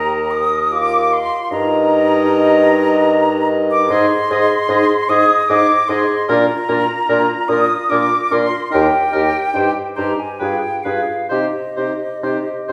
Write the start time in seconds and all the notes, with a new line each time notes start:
Already playing: D#2 G4 A#4 D#5 A#5
0.31 D#6
0.72 F4 D6
1.13 C6
1.51 G2 D#4 A#4 D#5 A#5
3.71 D6
3.89 G#2 D#4 G#4 D#5 C6
4.30 G#2 D#4 G#4 D#5
4.69 G#2 D#4 G#4 D#5
5.09 G#2 D#4 G#4 D#5 D#6
5.49 G#2 D#4 G#4 D#5 D6
5.88 G#2 D#4 G#4 D#5 C6
6.29 A#2 D4 F4 A#4 A#5
6.68 A#2 D4 F4 A#4
7.09 A#2 D4 F4 A#4
7.48 A#2 D4 F4 A#4 D#6
7.90 A#2 D4 F4 A#4 D6
8.31 A#2 D4 F4 A#4 C6
8.71 D#2 D#4 G4 A#4 G5
9.12 D#2 D#4 A#4
9.16 G4
9.54 G2 D#4 C5
9.59 G4
9.96 G2 D#4 G4 C5 A#5
10.20 G#5
10.39 G2 F4 G#4 B4 G5
10.83 G2 F4 G#4 B4 F5
11.29 C3 D#4 G4 C5 D#5
11.77 C3 D#4 G4 C5
12.23 C3 D#4 G4 C5
12.68 C3 C5